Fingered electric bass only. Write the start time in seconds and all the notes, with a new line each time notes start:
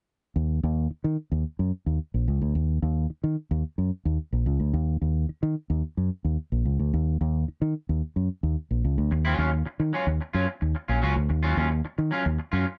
0.36 D#2
0.63 D#2
0.91 muted fingered electric bass stroke
1.04 D#3
1.32 D#2
1.59 F#2
1.86 D#2
2.14 A#1
2.28 C#2
2.42 D2
2.55 D#2
2.82 D#2
3.10 muted fingered electric bass stroke
3.24 D#3
3.51 D#2
3.78 F#2
4.05 D#2
4.33 A#1
4.46 C#2
4.60 D2
4.74 D#2
5.01 D#2
5.29 muted fingered electric bass stroke
5.43 D#3
5.70 D#2
5.97 F#2
6.25 D#2
6.52 A#1
6.65 C#2
6.79 D2
6.93 D#2
7.21 D#2
7.48 muted fingered electric bass stroke
7.62 D#3
7.89 D#2
8.16 F#2
8.43 D#2
8.71 A#1
8.84 C#2
8.98 D2
9.11 D#2
9.39 D#2
9.66 muted fingered electric bass stroke
9.80 D#3
10.07 D#2
10.34 F#2
10.62 D#2
10.89 A#1
11.03 C#2
11.16 D2
11.30 D#2
11.57 D#2
11.85 muted fingered electric bass stroke
11.98 D#3
12.26 D#2
12.53 F#2